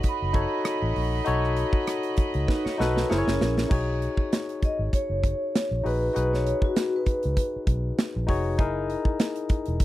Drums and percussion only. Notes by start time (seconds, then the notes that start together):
0.03 kick, closed hi-hat
0.34 kick, closed hi-hat
0.65 cross-stick, closed hi-hat
0.96 open hi-hat
1.26 closed hi-hat
1.44 cross-stick
1.57 closed hi-hat
1.73 kick
1.87 cross-stick, closed hi-hat
2.03 closed hi-hat
2.17 kick, closed hi-hat
2.34 closed hi-hat
2.48 kick, snare
2.66 snare
2.81 snare
2.97 snare
3.11 snare
3.28 snare
3.41 snare
3.58 snare
3.71 kick, crash
4.02 closed hi-hat
4.17 kick
4.33 snare, closed hi-hat
4.49 closed hi-hat
4.62 kick, closed hi-hat
4.93 kick, closed hi-hat
5.24 kick, closed hi-hat
5.55 snare, closed hi-hat
5.86 open hi-hat
6.16 closed hi-hat
6.34 snare
6.46 closed hi-hat
6.62 kick
6.76 snare, closed hi-hat
7.06 kick, closed hi-hat
7.23 closed hi-hat
7.37 kick, closed hi-hat
7.67 kick, closed hi-hat
7.98 snare, closed hi-hat
8.29 kick, open hi-hat
8.59 kick, closed hi-hat
8.90 closed hi-hat
9.05 kick
9.20 snare, closed hi-hat
9.36 closed hi-hat
9.49 kick, closed hi-hat
9.66 closed hi-hat
9.80 kick, closed hi-hat